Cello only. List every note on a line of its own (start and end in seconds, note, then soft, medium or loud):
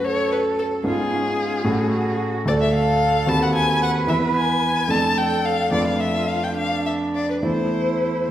0.05 0.85 A4 medium
0.87 1.13 F4 medium
1.13 1.21 C#4 medium
1.40 1.67 F4 medium
1.68 2.47 F#4 medium
2.48 3.30 A4 medium
3.29 4.90 B4 medium
4.90 5.71 A4 medium
5.73 6.55 F4 medium
6.57 7.45 D4 medium
7.43 8.31 E4 medium